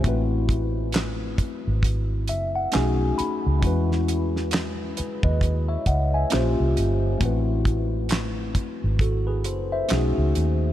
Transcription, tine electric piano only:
0.01 A3 C4 E4
0.07 F#4 B4
2.29 E5
2.55 F#5
2.72 A3 C#4 D#4 F#4 G#4 G#5
3.18 B5
3.59 G#3 C#4
3.63 E4 F#4 B4
4.98 G#4 B4
5.24 B4 D#5
5.68 C#5 E5
5.87 D#5 F#5
6.14 E5 G#5
6.30 A#3 C#4 F4 G4 C5
7.18 A3 C4 E4
7.24 F#4 B4
9.01 F#4 A4
9.27 G#4 B4
9.46 A4 C5
9.72 C5 E5
9.88 A3 C#4 D#4 F#4 G#4

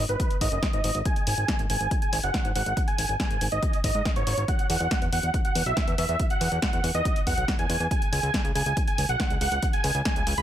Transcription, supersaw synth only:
0.09 B4
0.41 D#5
0.73 D#5
1.06 G#5
1.27 G#5
1.70 G#5
2.02 G#5
2.23 F#5
2.56 F#5
2.88 G#5
3.20 G#5
3.52 D#5
3.84 D#5
4.16 C#5
4.48 F#5
4.70 F#5
5.13 F#5
5.45 F#5
5.66 E5
5.98 E5
6.31 F#5
6.62 F#5
6.95 D#5
7.27 F#5
7.59 G#5
7.91 G#5
8.12 G#5
8.55 G#5
8.88 G#5
9.09 F#5
9.41 F#5
9.73 G#5
10.05 G#5
10.38 B5

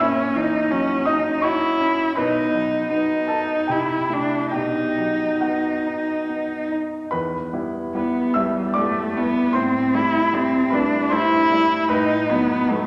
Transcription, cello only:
0.01 C#4
0.37 D#4
0.71 C#4
1.06 D#4
1.43 E4
2.19 D#4
2.93 D#4
3.71 E4
4.13 D4
4.55 D#4
7.95 B3
8.37 G3
8.76 A3
9.17 B3
9.55 C4
9.94 E4
10.34 C4
10.73 D4
11.12 E4
11.92 D#4
12.30 B3
12.69 A3

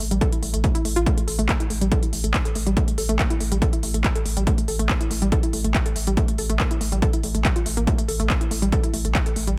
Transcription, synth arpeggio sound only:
0.00 A3
0.11 G3
0.21 A4
0.32 E4
0.43 A3
0.54 A3
0.64 A3
0.75 E4
0.85 A3
0.96 F4
1.06 A3
1.17 A3
1.28 A4
1.39 A3
1.49 A#3
1.60 E4
1.70 A3
1.81 G3
1.91 A4
2.03 E4
2.13 A3
2.24 A3
2.34 A3
2.45 A4
2.55 A3
2.66 G3
2.77 A3
2.88 A3
2.98 A4
3.09 A3
3.19 A#3
3.30 E4
3.40 A3
3.52 G3
3.62 A4
3.73 E4
3.83 A3
3.94 A3
4.04 A3
4.15 A4
4.26 A3
4.37 G3
4.47 A3
4.58 A3
4.68 A4
4.79 A3
4.89 A#3
5.00 E4
5.11 A3
5.22 G3
5.32 A4
5.43 E4
5.53 A3
5.64 A3
5.74 A3
5.86 A4
5.96 A3
6.07 G3
6.17 A3
6.28 A3
6.39 A4
6.50 A3
6.60 A#3
6.71 E4
6.81 A3
6.92 G3
7.02 A4
7.13 E4
7.24 A3
7.35 A3
7.45 G3
7.56 F4
7.66 A3
7.77 A#3
7.87 A3
7.98 A3
8.08 A4
8.20 A3
8.30 A#3
8.41 E4
8.51 A3
8.62 G3
8.72 A4
8.83 E4
8.94 A3
9.05 A3
9.15 A3
9.26 A4
9.36 A3
9.47 G3

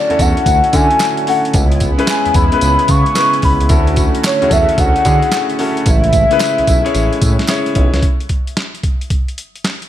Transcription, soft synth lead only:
Already playing: D5
0.21 F#5
0.75 G#5
1.29 F#5
2.09 G#5
2.36 B5
2.90 C#6
3.45 B5
4.26 C#5
4.52 E5
4.79 F#5
5.88 E5

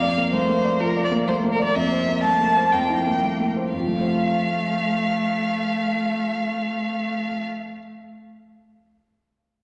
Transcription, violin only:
Already playing: F5
0.33 C5
0.80 A#4
1.04 D5
1.28 C5
1.52 A#4
1.64 D5
1.75 E5
2.23 A5
2.72 G5
3.73 F5

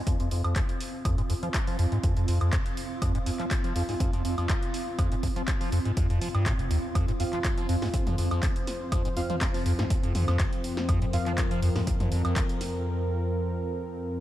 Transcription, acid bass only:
0.07 F2
0.20 F2
0.31 F2
0.44 F2
0.56 F2
1.05 F2
1.18 G#2
1.30 F2
1.43 F3
1.67 F3
1.79 F2
1.92 G#2
2.03 F2
2.17 F2
2.28 F2
2.41 F2
2.53 F2
3.02 F2
3.15 G#2
3.26 F2
3.40 F3
3.64 F3
3.76 F2
3.89 G#2
4.00 F2
4.13 F2
4.25 F2
4.38 F2
4.49 F2
4.99 F2
5.12 G#2
5.23 F2
5.36 F3
5.61 F3
5.72 F2
5.85 G#2
5.97 F2
6.10 F2
6.21 F3
6.35 G2
6.46 A#2
6.59 F1
6.71 D#2
6.95 F2
7.08 G#2
7.20 F2
7.33 F3
7.57 F3
7.69 F2
7.82 G#2
7.94 F2
8.07 F2
8.18 F2
8.31 F2
8.43 F2
8.92 F2
9.05 G#2
9.17 F2
9.30 F3
9.54 F3
9.66 F2
9.79 G#2
9.90 F2
10.03 F2
10.15 F2
10.28 F2
10.39 F2
10.89 F2
11.02 G#2
11.13 F2
11.26 F3
11.51 F3
11.62 F2
11.76 G#2
11.87 F2
12.00 F2
12.12 F2
12.25 F2
12.36 F2

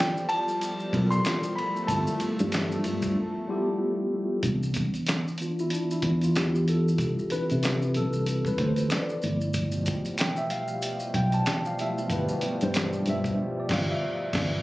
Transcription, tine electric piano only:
Already playing: G3 B3 E4 F4 A4
0.93 G3 B3 E4 F4 A#4
1.02 A4
1.88 G3 B3 E4 F4 A4
3.48 G3 B3 E4 F4 G4
4.44 E3 B3 D4
5.40 E3 B3 D4 F4
5.61 E4
5.73 D4
5.92 E4
6.24 F4
6.37 G4
6.69 A4
7.31 E3 C4 D4 B4
7.97 A4
8.48 B4
8.60 C5
8.93 D5
9.23 F3 A3 B3 E4
10.19 G5
10.38 E5
10.51 F5
11.16 G5
11.34 A5
11.67 F5
11.80 F3 A3 B3 E4 E5
12.12 B4
12.63 C5
13.09 E5
13.60 D5
13.73 F5
13.92 E5

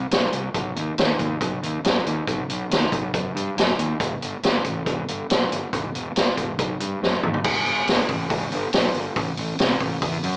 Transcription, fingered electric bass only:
0.11 B1
0.33 C2
0.54 B1
0.76 D#2
0.98 D#2
1.19 D#2
1.41 B1
1.63 D#2
1.84 F#2
2.06 D#2
2.27 B1
2.49 B1
2.70 D#2
2.92 B1
3.14 F#2
3.35 G2
3.57 F#2
3.79 D#2
4.00 E1
4.21 G1
4.43 G1
4.65 A1
4.86 E1
5.08 G1
5.30 B1
5.51 G1
5.73 E1
5.94 E1
6.15 G1
6.37 E1
6.59 B1
6.81 G2
7.02 F#2
7.23 D#2
7.44 E1
7.66 G1
7.87 G1
8.09 A1
8.30 E1
8.52 G1
8.73 B1
8.95 G1
9.16 A1
9.38 A1
9.59 C2
9.80 A1
10.02 E2
10.23 F#2

